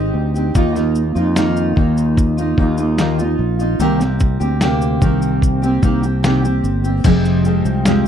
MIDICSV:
0, 0, Header, 1, 4, 480
1, 0, Start_track
1, 0, Key_signature, -3, "minor"
1, 0, Tempo, 810811
1, 327, Time_signature, 4, 2, 24, 8
1, 4782, End_track
2, 0, Start_track
2, 0, Title_t, "Steel-string acoustic guitar"
2, 0, Program_c, 0, 25
2, 0, Note_on_c, 0, 60, 44
2, 0, Note_on_c, 0, 63, 57
2, 0, Note_on_c, 0, 67, 55
2, 195, Note_off_c, 0, 67, 0
2, 202, Note_on_c, 0, 67, 51
2, 205, Note_off_c, 0, 63, 0
2, 212, Note_on_c, 0, 63, 43
2, 213, Note_off_c, 0, 60, 0
2, 220, Note_on_c, 0, 60, 43
2, 322, Note_on_c, 0, 51, 78
2, 324, Note_off_c, 0, 60, 0
2, 324, Note_off_c, 0, 63, 0
2, 325, Note_off_c, 0, 67, 0
2, 326, Note_on_c, 0, 58, 75
2, 331, Note_on_c, 0, 63, 88
2, 333, Note_on_c, 0, 65, 93
2, 432, Note_off_c, 0, 65, 0
2, 439, Note_on_c, 0, 65, 49
2, 442, Note_off_c, 0, 63, 0
2, 445, Note_off_c, 0, 51, 0
2, 447, Note_off_c, 0, 58, 0
2, 450, Note_on_c, 0, 63, 44
2, 457, Note_on_c, 0, 58, 48
2, 674, Note_off_c, 0, 65, 0
2, 681, Note_on_c, 0, 65, 53
2, 683, Note_off_c, 0, 63, 0
2, 690, Note_on_c, 0, 63, 46
2, 692, Note_off_c, 0, 58, 0
2, 699, Note_on_c, 0, 58, 40
2, 800, Note_off_c, 0, 58, 0
2, 802, Note_on_c, 0, 51, 77
2, 803, Note_off_c, 0, 63, 0
2, 804, Note_off_c, 0, 65, 0
2, 807, Note_on_c, 0, 58, 85
2, 810, Note_on_c, 0, 63, 87
2, 814, Note_on_c, 0, 65, 95
2, 1033, Note_off_c, 0, 51, 0
2, 1041, Note_off_c, 0, 58, 0
2, 1041, Note_on_c, 0, 51, 59
2, 1048, Note_off_c, 0, 63, 0
2, 1048, Note_on_c, 0, 58, 55
2, 1051, Note_off_c, 0, 65, 0
2, 1055, Note_on_c, 0, 63, 67
2, 1061, Note_on_c, 0, 65, 62
2, 1396, Note_off_c, 0, 65, 0
2, 1403, Note_on_c, 0, 65, 56
2, 1404, Note_off_c, 0, 51, 0
2, 1405, Note_off_c, 0, 63, 0
2, 1408, Note_off_c, 0, 58, 0
2, 1413, Note_on_c, 0, 63, 57
2, 1421, Note_on_c, 0, 58, 50
2, 1523, Note_off_c, 0, 58, 0
2, 1523, Note_on_c, 0, 51, 60
2, 1526, Note_off_c, 0, 65, 0
2, 1530, Note_off_c, 0, 63, 0
2, 1530, Note_on_c, 0, 58, 59
2, 1537, Note_on_c, 0, 63, 63
2, 1541, Note_on_c, 0, 65, 65
2, 1636, Note_off_c, 0, 65, 0
2, 1643, Note_on_c, 0, 65, 51
2, 1645, Note_off_c, 0, 51, 0
2, 1645, Note_off_c, 0, 63, 0
2, 1649, Note_off_c, 0, 58, 0
2, 1653, Note_on_c, 0, 63, 47
2, 1661, Note_on_c, 0, 58, 40
2, 1762, Note_off_c, 0, 58, 0
2, 1763, Note_on_c, 0, 51, 76
2, 1766, Note_off_c, 0, 63, 0
2, 1766, Note_off_c, 0, 65, 0
2, 1769, Note_on_c, 0, 58, 80
2, 1773, Note_on_c, 0, 63, 78
2, 1776, Note_on_c, 0, 65, 76
2, 1878, Note_off_c, 0, 65, 0
2, 1885, Note_off_c, 0, 51, 0
2, 1885, Note_on_c, 0, 65, 57
2, 1888, Note_off_c, 0, 63, 0
2, 1889, Note_off_c, 0, 58, 0
2, 1895, Note_on_c, 0, 63, 53
2, 1903, Note_on_c, 0, 58, 46
2, 2119, Note_off_c, 0, 65, 0
2, 2126, Note_on_c, 0, 65, 54
2, 2128, Note_off_c, 0, 63, 0
2, 2135, Note_on_c, 0, 63, 45
2, 2136, Note_off_c, 0, 58, 0
2, 2143, Note_on_c, 0, 58, 45
2, 2247, Note_off_c, 0, 58, 0
2, 2247, Note_off_c, 0, 65, 0
2, 2247, Note_on_c, 0, 48, 83
2, 2250, Note_on_c, 0, 51, 88
2, 2252, Note_off_c, 0, 63, 0
2, 2254, Note_on_c, 0, 58, 95
2, 2257, Note_on_c, 0, 60, 90
2, 2259, Note_on_c, 0, 67, 89
2, 2358, Note_off_c, 0, 67, 0
2, 2366, Note_on_c, 0, 67, 48
2, 2368, Note_off_c, 0, 48, 0
2, 2368, Note_off_c, 0, 60, 0
2, 2369, Note_off_c, 0, 51, 0
2, 2371, Note_off_c, 0, 58, 0
2, 2375, Note_on_c, 0, 60, 50
2, 2382, Note_on_c, 0, 58, 45
2, 2597, Note_off_c, 0, 67, 0
2, 2604, Note_on_c, 0, 67, 61
2, 2607, Note_off_c, 0, 60, 0
2, 2614, Note_on_c, 0, 60, 52
2, 2615, Note_off_c, 0, 58, 0
2, 2623, Note_on_c, 0, 58, 48
2, 2726, Note_off_c, 0, 67, 0
2, 2727, Note_off_c, 0, 58, 0
2, 2727, Note_on_c, 0, 48, 77
2, 2731, Note_off_c, 0, 60, 0
2, 2734, Note_on_c, 0, 58, 81
2, 2738, Note_on_c, 0, 60, 80
2, 2739, Note_on_c, 0, 67, 100
2, 2967, Note_off_c, 0, 58, 0
2, 2968, Note_off_c, 0, 48, 0
2, 2968, Note_on_c, 0, 51, 69
2, 2973, Note_off_c, 0, 60, 0
2, 2974, Note_off_c, 0, 67, 0
2, 2974, Note_on_c, 0, 58, 56
2, 2981, Note_on_c, 0, 60, 69
2, 2985, Note_on_c, 0, 67, 70
2, 3319, Note_off_c, 0, 67, 0
2, 3326, Note_on_c, 0, 67, 60
2, 3329, Note_off_c, 0, 51, 0
2, 3329, Note_off_c, 0, 60, 0
2, 3332, Note_off_c, 0, 58, 0
2, 3336, Note_on_c, 0, 60, 62
2, 3345, Note_on_c, 0, 58, 50
2, 3446, Note_off_c, 0, 58, 0
2, 3446, Note_on_c, 0, 51, 55
2, 3448, Note_off_c, 0, 67, 0
2, 3453, Note_off_c, 0, 60, 0
2, 3453, Note_on_c, 0, 58, 67
2, 3459, Note_on_c, 0, 60, 62
2, 3464, Note_on_c, 0, 67, 61
2, 3560, Note_off_c, 0, 67, 0
2, 3567, Note_on_c, 0, 67, 47
2, 3568, Note_off_c, 0, 51, 0
2, 3570, Note_off_c, 0, 60, 0
2, 3571, Note_off_c, 0, 58, 0
2, 3577, Note_on_c, 0, 60, 47
2, 3585, Note_on_c, 0, 58, 40
2, 3687, Note_off_c, 0, 58, 0
2, 3688, Note_off_c, 0, 67, 0
2, 3688, Note_on_c, 0, 48, 80
2, 3689, Note_off_c, 0, 60, 0
2, 3692, Note_on_c, 0, 51, 77
2, 3694, Note_on_c, 0, 58, 79
2, 3697, Note_on_c, 0, 60, 78
2, 3700, Note_on_c, 0, 67, 87
2, 3799, Note_off_c, 0, 67, 0
2, 3806, Note_on_c, 0, 67, 60
2, 3808, Note_off_c, 0, 48, 0
2, 3808, Note_off_c, 0, 60, 0
2, 3811, Note_off_c, 0, 51, 0
2, 3812, Note_off_c, 0, 58, 0
2, 3815, Note_on_c, 0, 60, 59
2, 3822, Note_on_c, 0, 58, 47
2, 4042, Note_off_c, 0, 67, 0
2, 4049, Note_on_c, 0, 67, 50
2, 4050, Note_off_c, 0, 60, 0
2, 4055, Note_off_c, 0, 58, 0
2, 4057, Note_on_c, 0, 60, 49
2, 4065, Note_on_c, 0, 58, 45
2, 4169, Note_off_c, 0, 67, 0
2, 4169, Note_on_c, 0, 41, 78
2, 4172, Note_off_c, 0, 60, 0
2, 4173, Note_on_c, 0, 48, 86
2, 4176, Note_off_c, 0, 58, 0
2, 4177, Note_on_c, 0, 53, 94
2, 4178, Note_on_c, 0, 56, 86
2, 4179, Note_on_c, 0, 60, 90
2, 4181, Note_on_c, 0, 67, 88
2, 4401, Note_off_c, 0, 53, 0
2, 4407, Note_off_c, 0, 56, 0
2, 4408, Note_on_c, 0, 53, 64
2, 4409, Note_off_c, 0, 41, 0
2, 4411, Note_off_c, 0, 48, 0
2, 4414, Note_off_c, 0, 60, 0
2, 4414, Note_on_c, 0, 56, 60
2, 4415, Note_off_c, 0, 67, 0
2, 4420, Note_on_c, 0, 60, 63
2, 4426, Note_on_c, 0, 67, 69
2, 4649, Note_off_c, 0, 53, 0
2, 4650, Note_on_c, 0, 41, 80
2, 4652, Note_off_c, 0, 56, 0
2, 4653, Note_on_c, 0, 48, 83
2, 4655, Note_off_c, 0, 60, 0
2, 4656, Note_on_c, 0, 53, 91
2, 4657, Note_off_c, 0, 67, 0
2, 4660, Note_on_c, 0, 56, 85
2, 4662, Note_on_c, 0, 60, 97
2, 4664, Note_on_c, 0, 67, 91
2, 4782, Note_off_c, 0, 41, 0
2, 4782, Note_off_c, 0, 48, 0
2, 4782, Note_off_c, 0, 53, 0
2, 4782, Note_off_c, 0, 56, 0
2, 4782, Note_off_c, 0, 60, 0
2, 4782, Note_off_c, 0, 67, 0
2, 4782, End_track
3, 0, Start_track
3, 0, Title_t, "Fretless electric bass"
3, 0, Program_c, 1, 35
3, 0, Note_on_c, 1, 32, 84
3, 62, Note_off_c, 1, 32, 0
3, 82, Note_on_c, 1, 38, 82
3, 305, Note_off_c, 1, 38, 0
3, 326, Note_on_c, 1, 39, 89
3, 663, Note_off_c, 1, 39, 0
3, 685, Note_on_c, 1, 41, 84
3, 1023, Note_off_c, 1, 41, 0
3, 1046, Note_on_c, 1, 39, 78
3, 1504, Note_off_c, 1, 39, 0
3, 1526, Note_on_c, 1, 39, 98
3, 1983, Note_off_c, 1, 39, 0
3, 2006, Note_on_c, 1, 34, 86
3, 2228, Note_off_c, 1, 34, 0
3, 2246, Note_on_c, 1, 36, 96
3, 2584, Note_off_c, 1, 36, 0
3, 2609, Note_on_c, 1, 38, 90
3, 2945, Note_off_c, 1, 38, 0
3, 2970, Note_on_c, 1, 36, 95
3, 3426, Note_off_c, 1, 36, 0
3, 3449, Note_on_c, 1, 36, 92
3, 3905, Note_off_c, 1, 36, 0
3, 3928, Note_on_c, 1, 31, 85
3, 4150, Note_off_c, 1, 31, 0
3, 4170, Note_on_c, 1, 29, 89
3, 4506, Note_off_c, 1, 29, 0
3, 4530, Note_on_c, 1, 36, 92
3, 4750, Note_off_c, 1, 36, 0
3, 4782, End_track
4, 0, Start_track
4, 0, Title_t, "Drums"
4, 210, Note_on_c, 9, 82, 46
4, 269, Note_off_c, 9, 82, 0
4, 324, Note_on_c, 9, 82, 58
4, 327, Note_on_c, 9, 36, 108
4, 384, Note_off_c, 9, 82, 0
4, 386, Note_off_c, 9, 36, 0
4, 447, Note_on_c, 9, 38, 32
4, 449, Note_on_c, 9, 82, 44
4, 506, Note_off_c, 9, 38, 0
4, 509, Note_off_c, 9, 82, 0
4, 564, Note_on_c, 9, 82, 52
4, 623, Note_off_c, 9, 82, 0
4, 686, Note_on_c, 9, 82, 39
4, 746, Note_off_c, 9, 82, 0
4, 806, Note_on_c, 9, 38, 99
4, 808, Note_on_c, 9, 82, 76
4, 866, Note_off_c, 9, 38, 0
4, 868, Note_off_c, 9, 82, 0
4, 926, Note_on_c, 9, 82, 46
4, 986, Note_off_c, 9, 82, 0
4, 1048, Note_on_c, 9, 36, 78
4, 1107, Note_off_c, 9, 36, 0
4, 1169, Note_on_c, 9, 82, 51
4, 1228, Note_off_c, 9, 82, 0
4, 1287, Note_on_c, 9, 36, 86
4, 1290, Note_on_c, 9, 82, 58
4, 1346, Note_off_c, 9, 36, 0
4, 1349, Note_off_c, 9, 82, 0
4, 1409, Note_on_c, 9, 82, 47
4, 1468, Note_off_c, 9, 82, 0
4, 1526, Note_on_c, 9, 36, 75
4, 1585, Note_off_c, 9, 36, 0
4, 1643, Note_on_c, 9, 82, 44
4, 1702, Note_off_c, 9, 82, 0
4, 1766, Note_on_c, 9, 82, 64
4, 1767, Note_on_c, 9, 38, 102
4, 1825, Note_off_c, 9, 82, 0
4, 1826, Note_off_c, 9, 38, 0
4, 1889, Note_on_c, 9, 82, 47
4, 1948, Note_off_c, 9, 82, 0
4, 2129, Note_on_c, 9, 82, 45
4, 2188, Note_off_c, 9, 82, 0
4, 2247, Note_on_c, 9, 82, 58
4, 2306, Note_off_c, 9, 82, 0
4, 2370, Note_on_c, 9, 38, 33
4, 2372, Note_on_c, 9, 82, 46
4, 2429, Note_off_c, 9, 38, 0
4, 2431, Note_off_c, 9, 82, 0
4, 2484, Note_on_c, 9, 82, 53
4, 2490, Note_on_c, 9, 36, 96
4, 2544, Note_off_c, 9, 82, 0
4, 2549, Note_off_c, 9, 36, 0
4, 2609, Note_on_c, 9, 82, 41
4, 2668, Note_off_c, 9, 82, 0
4, 2729, Note_on_c, 9, 38, 112
4, 2730, Note_on_c, 9, 82, 70
4, 2788, Note_off_c, 9, 38, 0
4, 2790, Note_off_c, 9, 82, 0
4, 2850, Note_on_c, 9, 82, 52
4, 2909, Note_off_c, 9, 82, 0
4, 2969, Note_on_c, 9, 82, 51
4, 2970, Note_on_c, 9, 36, 81
4, 3028, Note_off_c, 9, 82, 0
4, 3030, Note_off_c, 9, 36, 0
4, 3090, Note_on_c, 9, 82, 50
4, 3149, Note_off_c, 9, 82, 0
4, 3210, Note_on_c, 9, 36, 76
4, 3215, Note_on_c, 9, 82, 64
4, 3269, Note_off_c, 9, 36, 0
4, 3274, Note_off_c, 9, 82, 0
4, 3334, Note_on_c, 9, 82, 49
4, 3393, Note_off_c, 9, 82, 0
4, 3449, Note_on_c, 9, 82, 47
4, 3450, Note_on_c, 9, 36, 87
4, 3508, Note_off_c, 9, 82, 0
4, 3509, Note_off_c, 9, 36, 0
4, 3570, Note_on_c, 9, 82, 44
4, 3629, Note_off_c, 9, 82, 0
4, 3694, Note_on_c, 9, 38, 110
4, 3694, Note_on_c, 9, 82, 65
4, 3753, Note_off_c, 9, 82, 0
4, 3754, Note_off_c, 9, 38, 0
4, 3817, Note_on_c, 9, 82, 58
4, 3876, Note_off_c, 9, 82, 0
4, 3932, Note_on_c, 9, 82, 53
4, 3991, Note_off_c, 9, 82, 0
4, 4051, Note_on_c, 9, 82, 49
4, 4110, Note_off_c, 9, 82, 0
4, 4168, Note_on_c, 9, 82, 62
4, 4169, Note_on_c, 9, 49, 92
4, 4171, Note_on_c, 9, 36, 114
4, 4228, Note_off_c, 9, 49, 0
4, 4228, Note_off_c, 9, 82, 0
4, 4230, Note_off_c, 9, 36, 0
4, 4290, Note_on_c, 9, 38, 35
4, 4292, Note_on_c, 9, 82, 47
4, 4349, Note_off_c, 9, 38, 0
4, 4351, Note_off_c, 9, 82, 0
4, 4409, Note_on_c, 9, 82, 56
4, 4468, Note_off_c, 9, 82, 0
4, 4530, Note_on_c, 9, 82, 49
4, 4589, Note_off_c, 9, 82, 0
4, 4650, Note_on_c, 9, 38, 102
4, 4652, Note_on_c, 9, 82, 68
4, 4709, Note_off_c, 9, 38, 0
4, 4711, Note_off_c, 9, 82, 0
4, 4782, End_track
0, 0, End_of_file